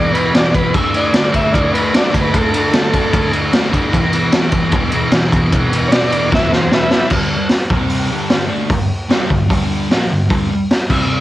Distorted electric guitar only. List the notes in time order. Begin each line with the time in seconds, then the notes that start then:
Already playing: E2 B2 E3
0.15 E2 B2 E3
0.33 E2 B2 E3
0.56 E2 B2 E3
0.75 D3 A3 D4
0.92 D3 A3 D4
1.13 D3 A3 D4
1.33 D3 A3 D4
1.53 D3 A3 D4
1.72 D3 A3 D4
1.93 D3 A3 D4
2.15 D3 A3 D4
2.34 D3 A3 D4
2.54 D3 A3 D4
2.73 D3 A3 D4
2.93 D3 A3 D4
3.13 D3 A3 D4
3.33 D3 A3 D4
3.53 D3 A3 D4
3.72 D3 A3 D4
3.93 E2 B2 E3
4.14 E2 B2 E3
4.33 E2 B2 E3
4.52 E2 B2 E3
4.72 E2 B2 E3
4.93 E2 B2 E3
5.13 E2 B2 E3
5.33 E2 B2 E3
5.52 E2 B2 E3
5.72 E2 B2 E3
5.89 E2 B2 E3
6.11 E2 B2 E3
6.30 E2 B2 E3
6.51 E2 B2 E3
6.72 E2 B2 E3
6.92 E2 B2 E3
7.13 G2 D3 G3
7.30 muted distorted electric guitar stroke
7.72 C3 G3 C4
8.10 G2 D3 G3
8.49 D3 A3 D4
8.70 G2 D3
9.09 C3 G3 C4
9.30 G2 D3
9.49 G2 D3 G3
9.90 A#2 F3 A#3
10.11 G2 D3
10.29 G2 D3 G3
10.51 muted distorted electric guitar stroke
10.90 C3 G3 C4